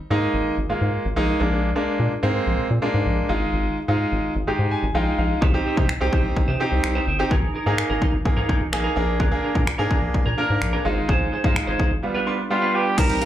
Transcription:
0.10 G#2 G#3 A#3 D#4
0.34 G#1
0.58 G#1
0.69 G#2 G#3 A#3 F4
0.81 G#2
1.05 G#1
1.16 A#1 G#3 A#3 D#4
1.40 A#1 G#3 A#3 D4
1.75 G#3 A#3 D4
2.00 A#2
2.23 G#2 G#3 A#3 C4
2.47 A#1
2.59 A#2
2.70 A#2
2.82 G#3 A#3 D4
2.94 G#2
3.06 A#1
3.29 G#1 G#3 D#4 F4
3.53 G#1
3.88 G#2 G#3 D#4 F4
4.12 G#1
4.36 G#1
4.47 G#2 G#3 D#4 G4
4.59 G#2
4.71 G#5
4.83 G#1
4.94 A#1 G#3 D#4 F4 G5
5.18 A#1 F5
5.41 C2 D#4 G4 C5, kick
5.54 C4 D#4 G4
5.65 D#4 G4 C5
5.77 C3 D#4 G4 C5, kick
5.89 finger snap, muted clean electric guitar stroke
6.01 C2 C4 D#4 G4 C5
6.12 D#4 G4 C5, kick
6.24 C2, muted clean electric guitar stroke
6.36 C3, muted clean electric guitar stroke, kick
6.48 C3 D#4 G4 C5
6.60 C4 D#4 G4 C5
6.72 C2, muted clean electric guitar stroke
6.84 C2, finger snap, muted clean electric guitar stroke
6.95 D#4 G4 C5
7.07 G1 D#4 G4 C5
7.19 C4 D#4 G4, muted clean electric guitar stroke
7.30 G#1 D#4 G#4 A#4, kick
7.54 D#4 G#4 A#4
7.66 G#2 A#3 D#4 G#4 A#4
7.78 finger snap, muted clean electric guitar stroke
7.90 G#1 D#4 G#4 A#4
8.01 D#4 G#4 A#4, kick
8.13 G#1, muted clean electric guitar stroke
8.25 G#2 A#3 D#4 G#4, muted clean electric guitar stroke, kick
8.37 G#2 D#4 G#4 A#4
8.49 D#4 G#4 A#4, kick
8.61 G#1, muted clean electric guitar stroke
8.72 A#1 A#3 D#4 G#4 G#5, finger snap, muted clean electric guitar stroke
8.84 D#4 G#4 A#4
8.96 A#1 A#3 D4 G#4 A#4 F5
9.08 muted clean electric guitar stroke
9.19 D4 G#4 A#4, kick
9.31 A#3 D4 G#4
9.43 D4 G#4 A#4
9.55 A#2 D4 G#4 A#4, kick
9.67 finger snap, muted clean electric guitar stroke
9.78 G#2 A#3 D4 G#4 A#4
9.90 D4 G#4 A#4, kick
10.02 A#1, muted clean electric guitar stroke
10.14 A#2, muted clean electric guitar stroke, kick
10.26 A#2 D4 G#4 A#4
10.38 A#3 D4 G#4 A#4
10.50 G#2, muted clean electric guitar stroke
10.61 A#1, finger snap, muted clean electric guitar stroke
10.73 D4 G#4 A#4
10.85 G#1 G#3 D#4 F4 G#4 C5
10.97 muted clean electric guitar stroke
11.08 G#1 D#4 G#4 C5, kick
11.32 D#4 G#4 C5
11.44 G#2 G#3 D#4 F4 G#4 C5, kick
11.56 finger snap, muted clean electric guitar stroke
11.67 G#1 D#4 G#4 C5
11.79 D#4 G#4 C5, kick
11.91 G#1, muted clean electric guitar stroke
12.03 G3 B3 F4, muted clean electric guitar stroke
12.15 D4 F4 B4
12.26 D4 F4 B4 C6
12.39 muted clean electric guitar stroke
12.50 G3 B3 F4 G5, muted clean electric guitar stroke
12.62 D4 F4 B4
12.74 D4 F4 G4 B4
12.86 muted clean electric guitar stroke
12.97 C2 D#3 G3 C4 D#4 G4 A#4 C5, kick, closed hi-hat, crash
13.10 closed hi-hat
13.21 G3 C4 D#4 F4 G4, closed hi-hat

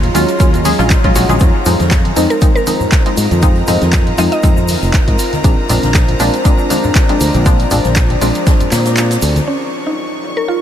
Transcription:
Already playing: F#3 G#3 D#4 F4 G#4 C#5 F5 A#5 C6
0.03 closed hi-hat, high conga, low conga
0.14 D#2 F#3 G#3 C#4 F4, open hi-hat, shaker
0.29 closed hi-hat, shaker
0.40 D#2 F#3 G#3 C#4 F4, kick, closed hi-hat, shaker
0.54 closed hi-hat, low conga, shaker
0.65 F#3 G#3 C#4 G#4, open hi-hat, high conga, shaker
0.79 A#1 F#3 G#3 C#4 F4, closed hi-hat, shaker
0.90 kick, snare, clap, closed hi-hat, shaker
1.04 A#1 F#3 G#3 C#4 F4, kick, closed hi-hat
1.15 A#1 F#3 G#3 C#4 F#4, open hi-hat, shaker
1.28 A#1 F#3 G#3 C#4 G#4, snare, closed hi-hat, high conga, shaker
1.40 F2 F3 G#3 C4 D#4 C5 A#5, kick, closed hi-hat, shaker
1.41 shaker
1.61 A#4
1.65 F2 F3 G#3 C4 D#4, open hi-hat, low conga, shaker
1.77 F2 F4, snare, closed hi-hat, high conga, shaker
1.91 kick, snare, clap, closed hi-hat, shaker
2.05 closed hi-hat, high conga, low conga
2.16 F2 F3 G#3 C4 D#4, snare, open hi-hat, shaker
2.30 A#4, closed hi-hat, shaker
2.41 F3 G#3 C4 D#4, kick, closed hi-hat, shaker
2.56 A#4, shaker
2.66 F3 G#3 C4 D#4 D#5, open hi-hat, high conga, shaker
2.80 low conga, shaker
2.92 kick, snare, clap, closed hi-hat, shaker
3.06 F3 G#3 C4 D#4, closed hi-hat
3.17 G#2, open hi-hat, shaker
3.31 F2, closed hi-hat, high conga, shaker
3.42 F3 G#3 C4 D#4 A#4, kick, closed hi-hat, shaker
3.55 closed hi-hat
3.67 F2 F3 G#3 C4 D#4, open hi-hat, low conga, shaker
3.81 F2, snare, closed hi-hat, high conga, shaker
3.93 kick, snare, clap, closed hi-hat, shaker
4.06 closed hi-hat, high conga, low conga
4.18 F2 F3 G#3 C4 D#4 D#5, open hi-hat, shaker
4.32 D#5, closed hi-hat, shaker
4.43 F2 F3 G#3 C4 D#4, kick, closed hi-hat, shaker
4.57 low conga, shaker
4.68 open hi-hat, high conga, shaker
4.82 F1, closed hi-hat, shaker
4.93 kick, snare, clap, closed hi-hat, shaker
5.08 G#2, kick, closed hi-hat
5.18 open hi-hat, shaker
5.33 snare, closed hi-hat, high conga, shaker
5.44 A#1 F3 G#3 C4 D4 C5, kick, closed hi-hat, shaker
5.69 A#1 F3 G#3 C4 D4 D5, open hi-hat, low conga, shaker
5.83 A#1, snare, closed hi-hat, high conga, shaker
5.94 kick, snare, clap, closed hi-hat, shaker
6.08 closed hi-hat, high conga, low conga
6.19 A#1 F3 G#3 C4 D4, snare, open hi-hat, shaker
6.34 closed hi-hat, shaker
6.45 F3 G#3 C4 D4, kick, closed hi-hat, shaker
6.58 shaker
6.70 F3 G#3 C4 D4, open hi-hat, high conga, shaker
6.83 low conga, shaker
6.95 kick, snare, clap, closed hi-hat, shaker
7.09 F3 G#3 C4 D4, closed hi-hat
7.20 D2, open hi-hat, shaker
7.34 A#1, closed hi-hat, high conga, shaker
7.46 F3 G#3 C4 D4 G#4, kick, closed hi-hat, shaker
7.60 closed hi-hat
7.71 A#1 F3 G#3 C4 D4, open hi-hat, low conga, shaker
7.85 A#1, snare, closed hi-hat, high conga, shaker
7.96 kick, snare, clap, closed hi-hat, shaker
8.10 closed hi-hat, high conga, low conga
8.21 A#1 F3 G#3 C4 D4, open hi-hat, shaker
8.35 closed hi-hat, shaker
8.46 F3 G#3 C4 D4, kick, snare, closed hi-hat, shaker
8.60 closed hi-hat, low conga, shaker
8.72 A#2, snare, clap, open hi-hat, high conga, shaker
8.85 snare, closed hi-hat, shaker
8.97 snare, clap, closed hi-hat, shaker
9.10 snare, closed hi-hat, shaker
9.22 D2, open hi-hat, shaker
9.36 snare, closed hi-hat, high conga, shaker
9.47 F#3 G#3 C#4 D#4 F4 C#5 C#6
9.71 G#4
9.79 C#5
9.86 D#4, snare
10.12 F5
10.23 snare, shaker
10.37 A#4
10.48 F4

